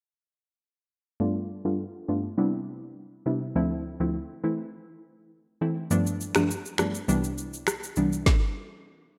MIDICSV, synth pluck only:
0, 0, Header, 1, 2, 480
1, 0, Start_track
1, 0, Key_signature, 0, "major"
1, 0, Tempo, 588235
1, 982, Time_signature, 4, 2, 24, 8
1, 7493, End_track
2, 0, Start_track
2, 0, Title_t, "Synth pluck"
2, 0, Program_c, 0, 84
2, 979, Note_on_c, 0, 43, 92
2, 981, Note_on_c, 0, 57, 80
2, 982, Note_on_c, 0, 59, 84
2, 983, Note_on_c, 0, 62, 88
2, 984, Note_on_c, 0, 65, 101
2, 1315, Note_off_c, 0, 43, 0
2, 1316, Note_off_c, 0, 57, 0
2, 1317, Note_off_c, 0, 59, 0
2, 1317, Note_off_c, 0, 62, 0
2, 1318, Note_off_c, 0, 65, 0
2, 1345, Note_on_c, 0, 43, 77
2, 1346, Note_on_c, 0, 57, 69
2, 1347, Note_on_c, 0, 59, 67
2, 1348, Note_on_c, 0, 62, 69
2, 1350, Note_on_c, 0, 65, 80
2, 1501, Note_off_c, 0, 43, 0
2, 1502, Note_off_c, 0, 57, 0
2, 1503, Note_off_c, 0, 59, 0
2, 1503, Note_off_c, 0, 62, 0
2, 1504, Note_off_c, 0, 65, 0
2, 1700, Note_on_c, 0, 43, 71
2, 1701, Note_on_c, 0, 57, 66
2, 1702, Note_on_c, 0, 59, 66
2, 1704, Note_on_c, 0, 62, 67
2, 1705, Note_on_c, 0, 65, 82
2, 1863, Note_off_c, 0, 43, 0
2, 1864, Note_off_c, 0, 57, 0
2, 1864, Note_off_c, 0, 59, 0
2, 1865, Note_off_c, 0, 62, 0
2, 1866, Note_off_c, 0, 65, 0
2, 1939, Note_on_c, 0, 48, 93
2, 1940, Note_on_c, 0, 55, 83
2, 1941, Note_on_c, 0, 59, 86
2, 1942, Note_on_c, 0, 62, 86
2, 1944, Note_on_c, 0, 64, 102
2, 2605, Note_off_c, 0, 48, 0
2, 2606, Note_off_c, 0, 55, 0
2, 2606, Note_off_c, 0, 59, 0
2, 2607, Note_off_c, 0, 62, 0
2, 2607, Note_off_c, 0, 64, 0
2, 2659, Note_on_c, 0, 48, 73
2, 2660, Note_on_c, 0, 55, 69
2, 2661, Note_on_c, 0, 59, 69
2, 2662, Note_on_c, 0, 62, 68
2, 2664, Note_on_c, 0, 64, 83
2, 2882, Note_off_c, 0, 48, 0
2, 2883, Note_off_c, 0, 55, 0
2, 2883, Note_off_c, 0, 59, 0
2, 2884, Note_off_c, 0, 62, 0
2, 2884, Note_off_c, 0, 64, 0
2, 2899, Note_on_c, 0, 38, 89
2, 2901, Note_on_c, 0, 53, 85
2, 2902, Note_on_c, 0, 57, 83
2, 2903, Note_on_c, 0, 60, 88
2, 2904, Note_on_c, 0, 64, 105
2, 3236, Note_off_c, 0, 38, 0
2, 3236, Note_off_c, 0, 53, 0
2, 3237, Note_off_c, 0, 57, 0
2, 3237, Note_off_c, 0, 60, 0
2, 3238, Note_off_c, 0, 64, 0
2, 3264, Note_on_c, 0, 38, 75
2, 3266, Note_on_c, 0, 53, 67
2, 3267, Note_on_c, 0, 57, 70
2, 3268, Note_on_c, 0, 60, 67
2, 3269, Note_on_c, 0, 64, 81
2, 3421, Note_off_c, 0, 38, 0
2, 3422, Note_off_c, 0, 53, 0
2, 3422, Note_off_c, 0, 57, 0
2, 3423, Note_off_c, 0, 60, 0
2, 3424, Note_off_c, 0, 64, 0
2, 3619, Note_on_c, 0, 52, 72
2, 3621, Note_on_c, 0, 57, 67
2, 3623, Note_on_c, 0, 60, 64
2, 3625, Note_on_c, 0, 64, 84
2, 3783, Note_off_c, 0, 52, 0
2, 3784, Note_off_c, 0, 57, 0
2, 3785, Note_off_c, 0, 60, 0
2, 3785, Note_off_c, 0, 64, 0
2, 4579, Note_on_c, 0, 52, 74
2, 4581, Note_on_c, 0, 57, 68
2, 4583, Note_on_c, 0, 60, 71
2, 4584, Note_on_c, 0, 64, 80
2, 4802, Note_off_c, 0, 52, 0
2, 4803, Note_off_c, 0, 57, 0
2, 4804, Note_off_c, 0, 60, 0
2, 4804, Note_off_c, 0, 64, 0
2, 4820, Note_on_c, 0, 43, 97
2, 4821, Note_on_c, 0, 53, 86
2, 4822, Note_on_c, 0, 57, 83
2, 4823, Note_on_c, 0, 59, 85
2, 4825, Note_on_c, 0, 62, 104
2, 5156, Note_off_c, 0, 43, 0
2, 5157, Note_off_c, 0, 53, 0
2, 5157, Note_off_c, 0, 57, 0
2, 5158, Note_off_c, 0, 59, 0
2, 5158, Note_off_c, 0, 62, 0
2, 5184, Note_on_c, 0, 43, 75
2, 5186, Note_on_c, 0, 53, 71
2, 5187, Note_on_c, 0, 57, 72
2, 5189, Note_on_c, 0, 59, 67
2, 5190, Note_on_c, 0, 62, 84
2, 5341, Note_off_c, 0, 43, 0
2, 5342, Note_off_c, 0, 53, 0
2, 5343, Note_off_c, 0, 57, 0
2, 5343, Note_off_c, 0, 59, 0
2, 5344, Note_off_c, 0, 62, 0
2, 5540, Note_on_c, 0, 43, 72
2, 5541, Note_on_c, 0, 53, 68
2, 5542, Note_on_c, 0, 57, 64
2, 5543, Note_on_c, 0, 59, 64
2, 5544, Note_on_c, 0, 62, 82
2, 5703, Note_off_c, 0, 43, 0
2, 5703, Note_off_c, 0, 53, 0
2, 5704, Note_off_c, 0, 57, 0
2, 5705, Note_off_c, 0, 59, 0
2, 5705, Note_off_c, 0, 62, 0
2, 5779, Note_on_c, 0, 36, 94
2, 5780, Note_on_c, 0, 52, 84
2, 5782, Note_on_c, 0, 55, 83
2, 5783, Note_on_c, 0, 59, 87
2, 5785, Note_on_c, 0, 62, 100
2, 6445, Note_off_c, 0, 36, 0
2, 6446, Note_off_c, 0, 52, 0
2, 6447, Note_off_c, 0, 55, 0
2, 6447, Note_off_c, 0, 59, 0
2, 6448, Note_off_c, 0, 62, 0
2, 6501, Note_on_c, 0, 36, 76
2, 6502, Note_on_c, 0, 52, 71
2, 6503, Note_on_c, 0, 55, 69
2, 6504, Note_on_c, 0, 59, 70
2, 6505, Note_on_c, 0, 62, 82
2, 6723, Note_off_c, 0, 36, 0
2, 6723, Note_off_c, 0, 52, 0
2, 6724, Note_off_c, 0, 55, 0
2, 6725, Note_off_c, 0, 59, 0
2, 6725, Note_off_c, 0, 62, 0
2, 7493, End_track
0, 0, End_of_file